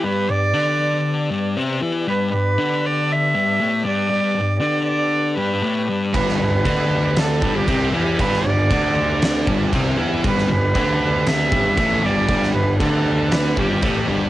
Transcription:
<<
  \new Staff \with { instrumentName = "Cello" } { \time 4/4 \key g \major \tempo 4 = 117 b'8 d''2 r4. | b'8 b'4 d''8 e''4. d''8~ | d''4 d''8 d''4 b'4 r8 | b'8 b'4. a'8. g'8. g'8 |
b'8 d''2 r4. | b'8 b'4. e''4. d''8~ | d''8 b'8 a'4 b'8 g'4 r8 | }
  \new Staff \with { instrumentName = "Tonewheel organ" } { \time 4/4 \key g \major <b g' d''>1~ | <b g' d''>1~ | <b g' d''>1~ | <b g' d''>1~ |
<b g' d''>1~ | <b g' d''>1~ | <b g' d''>1 | }
  \new Staff \with { instrumentName = "Distorted electric guitar" } { \clef bass \time 4/4 \key g \major r1 | r1 | r1 | <g, g>8 g,8 <d d'>4. <g, g>8 <c c'>8 <e e'>8 |
<g, g>8 g,8 <d d'>4. <g, g>8 <c c'>8 <e e'>8 | <g, g>8 g,8 <d d'>4. <g, g>8 <a, a>8 <g, g>8 | <g, g>8 g,8 <d d'>4. <g, g>8 <a, a>8 <g, g>8 | }
  \new Staff \with { instrumentName = "Distorted electric guitar" } { \clef bass \time 4/4 \key g \major <g, g>8 g,8 <d d'>4. <g, g>8 <c c'>8 <e e'>8 | <g, g>8 g,8 <d d'>4. <g, g>8 <a, a>8 <g, g>8 | <g, g>8 g,8 <d d'>4. <g, g>8 <a, a>8 <g, g>8 | <g, g>8 g,8 <d d'>4. <g, g>8 <c c'>8 <e e'>8 |
<g, g>8 g,8 <d d'>4. <g, g>8 <c c'>8 <e e'>8 | <g, g>8 g,8 <d d'>4. <g, g>8 <a, a>8 <g, g>8 | <g, g>8 g,8 <d d'>4. <g, g>8 <a, a>8 <g, g>8 | }
  \new Staff \with { instrumentName = "Picked electric bass" } { \clef bass \time 4/4 \key g \major r1 | r1 | r1 | g,,8 g,,8 d,4. g,,8 c,8 e,8 |
g,,8 g,,8 d,4. g,,8 c,8 e,8 | g,,8 g,,8 d,4. g,,8 a,,8 g,,8 | g,,8 g,,8 d,4. g,,8 a,,8 g,,8 | }
  \new DrumStaff \with { instrumentName = "Drums" } \drummode { \time 4/4 r4 r4 r4 r4 | r4 r4 r4 r4 | r4 r4 r4 r4 | <cymc bd>16 sn8. <cymc bd>4 <cymc sn>8 bd8 <cymc bd>4 |
<cymc bd>16 sn8. <cymc bd>4 <cymc sn>8 bd8 <cymc bd>4 | <cymc bd>16 sn8. <cymc bd>4 <cymc sn>8 bd8 <cymc bd>4 | <cymc bd>16 sn8. <cymc bd>4 <cymc sn>8 bd8 <cymc bd>4 | }
>>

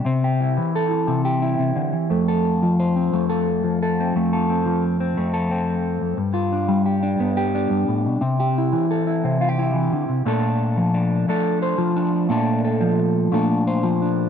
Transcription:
\new Staff \with { instrumentName = "Clean electric guitar" } { \time 12/8 \key bes \lydian \tempo 4. = 118 << { c'8 g'8 e'4 a'4 c'8 g'8 e'2 | a8 a'4. c''8 c'8 a8 a'4. a'8 c'8 | a8 a'8 c'4. c'8 a8 a'8 c'2 | r8 f'8 d'4 g'8 d'8 b8 g'8 d'2 |
c'8 g'8 e'4 a'8 e'8 c'8 f'16 g'16 e'2 | <a d' a'>2 d'4 <a d' a'>4 c''4 d'4 | <a d' a'>4 a'2 <a d' a'>4 c''4 d'4 | } \\ { c4. e4. c4. c8 d8 e8 | f,4. f4. f,4. f4. | f,4. f4. f,2~ f,8 f,8 | g,4. g4. g,4. g,8 a,8 b,8 |
c4. e4. c4. e8 d8 c8 | bes,4. f2. f4. | bes,4. f4. bes,4. f4. | } >> }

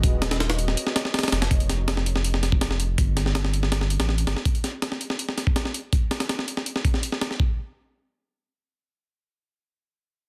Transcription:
<<
  \new Staff \with { instrumentName = "Ambient pad" } { \time 4/4 \key g \phrygian \tempo 4 = 163 <ges' bes' des'' ees''>1 | r1 | r1 | r1 |
r1 | r1 | r1 | }
  \new Staff \with { instrumentName = "Sub bass" } { \clef bass \time 4/4 \key g \phrygian ees,,2 r4. f,,8 | f,,1 | g,,2~ g,,8. a,,8. g,,16 r16 | r1 |
r1 | r1 | r1 | }
  \new DrumStaff \with { instrumentName = "Drums" } \drummode { \time 4/4 <hh bd>8 <hh sn>16 <hh sn>16 <hh sn>16 <hh sn>16 hh16 sn16 hh16 sn16 <hh sn>16 sn16 <hh sn>32 <hh sn>32 <hh sn>32 <hh sn>32 <hh sn>16 <hh sn>16 | <hh bd>16 hh16 <hh sn>8 <hh sn>16 sn16 hh16 sn16 hh16 sn16 <hh sn>16 bd16 <hh sn>16 sn16 hh8 | <hh bd>8 <hh sn>16 sn16 <hh sn>16 sn16 hh16 sn16 <hh sn>16 sn16 hh16 <hh sn>16 sn16 hh16 <hh sn>16 sn16 | <hh bd>16 hh16 <hh sn>8 <hh sn>16 sn16 hh16 sn16 hh16 sn16 <hh sn>16 bd16 <hh sn>16 sn16 hh8 |
<hh bd>8 <hh sn>16 <hh sn>16 <hh sn>16 sn16 hh16 sn16 hh16 sn16 <hh bd>16 sn16 hh16 sn16 <hh sn>16 sn16 | bd4 r4 r4 r4 | r4 r4 r4 r4 | }
>>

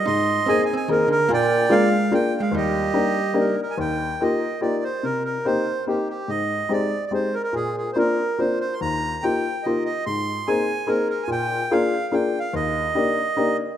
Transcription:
<<
  \new Staff \with { instrumentName = "Accordion" } { \time 3/4 \key ees \major \tempo 4 = 144 << { c'''4 \tuplet 3/2 { aes''8 aes''8 aes''8 } bes'8 bes'8 | g''4 f''4 \tuplet 3/2 { g''4 f''8 } | ees''2 \tuplet 3/2 { bes'8. bes'8 aes''16 } | g''4 ees''4 d''8 c''8 |
bes'8 bes'8 c''4 g'8 g'8 | ees''4 d''8.~ d''32 d''32 c''8 bes'32 r32 bes'16 | \tuplet 3/2 { aes'8. aes'8 c''16 } bes'4 \tuplet 3/2 { c''8. c''8 c'''16 } | bes''4 g''4 ees''8 ees''8 |
c'''4 aes''4 \tuplet 3/2 { bes'8. bes'8 aes''16 } | g''4 f''4 \tuplet 3/2 { g''4 f''8 } | ees''2~ ees''8 r8 | } \\ { ees''4. r4. | d''4. r4. | g'2~ g'8 r8 | r2. |
r2. | r2. | r2. | r2. |
r2. | r2. | r2. | } >> }
  \new Staff \with { instrumentName = "Upright piano" } { \time 3/4 \key ees \major aes,4 <bes c' ees' aes'>8 r8 <bes c' ees' aes'>8 r8 | bes,4 <bes d' f' aes'>8 r8 <bes d' f' aes'>8 r8 | ees,4 <bes d' ees' g'>8 r8 <bes d' ees' g'>8 r8 | ees,4 <bes ees' f' g'>8 r8 <bes ees' f' g'>8 r8 |
c4 <bes c' ees' g'>8 r8 <bes c' ees' g'>8 r8 | aes,4 <aes c' ees' g'>8 r8 <aes c' ees' g'>8 r8 | bes,4 <bes c' d' f'>8 r8 <bes c' d' f'>8 r8 | ees,4 <bes ees' f' g'>8 r8 <bes ees' f' g'>8 r8 |
aes,4 <bes c' ees' aes'>8 r8 <bes c' ees' aes'>8 r8 | bes,4 <bes d' f' aes'>8 r8 <bes d' f' aes'>8 r8 | ees,4 <bes d' ees' g'>8 r8 <bes d' ees' g'>8 r8 | }
  \new Staff \with { instrumentName = "Hollow-body jazz guitar" } { \time 3/4 \key ees \major ees'4 \tuplet 3/2 { c'8 c'8 c'8 } ees8 d8 | bes4 aes4 \tuplet 3/2 { bes4 aes8 } | g2~ g8 r8 | r2. |
r2. | r2. | r2. | r2. |
r2. | r2. | r2. | }
>>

